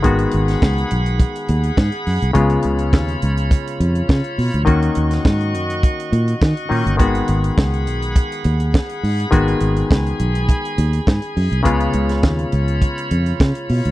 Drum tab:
HH |xxxx-xxxxxxx-xox|xxxx-xxxxxxx-xox|xxxx-xxxxxxx-xox|xxxx-xxxxxxx-xox|
SD |---oo-------o---|----o-------o---|---oo-------o---|----o-------o---|
BD |o---o---o---o---|o---o---o---o---|o---o---o---o---|o---o---o---o---|

HH |xxxx-xxxxxxx-xox|xxxx-xxxxxxx-xox|
SD |----o-------o---|---oo-------o---|
BD |o---o---o---o---|o---o---o---o---|